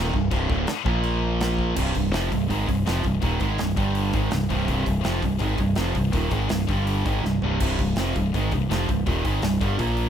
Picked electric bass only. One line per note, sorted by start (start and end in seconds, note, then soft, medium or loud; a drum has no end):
0.00 0.13 D#1 medium
0.14 0.31 C1 medium
0.32 0.49 C1 medium
0.50 0.67 D1 medium
0.69 muted picked electric bass stroke soft
0.86 1.73 A#1 medium
1.77 1.94 C1 medium
1.95 2.12 C1 medium
2.13 2.30 F1 medium
2.32 2.49 C1 medium
2.50 2.67 G#1 medium
2.68 2.85 C1 medium
2.88 3.04 F1 medium
3.05 3.21 C1 medium
3.23 3.40 D#1 medium
3.41 3.58 G#1 medium
3.61 3.77 C1 medium
3.77 4.11 G1 medium
4.14 4.31 G#1 medium
4.32 4.49 C1 medium
4.51 4.67 C1 medium
4.68 4.85 C1 medium
4.86 5.03 C1 medium
5.05 5.22 F1 medium
5.23 5.40 C1 medium
5.41 5.58 G#1 medium
5.59 5.76 C1 medium
5.77 5.94 F1 medium
5.95 6.13 C1 medium
6.13 6.31 D#1 medium
6.31 6.49 G#1 medium
6.50 6.68 C1 medium
6.69 7.03 G1 medium
7.06 7.23 G#1 medium
7.24 7.41 C1 medium
7.43 7.59 C1 medium
7.61 7.77 C1 medium
7.79 7.96 C1 medium
7.98 8.14 F1 medium
8.16 8.33 C1 medium
8.34 8.51 G#1 medium
8.53 8.69 C1 medium
8.70 8.87 F1 medium
8.89 9.06 C1 medium
9.07 9.24 D#1 loud
9.25 9.41 G#1 medium
9.42 9.59 C1 medium
9.61 9.78 G1 medium
9.79 10.09 A#1 medium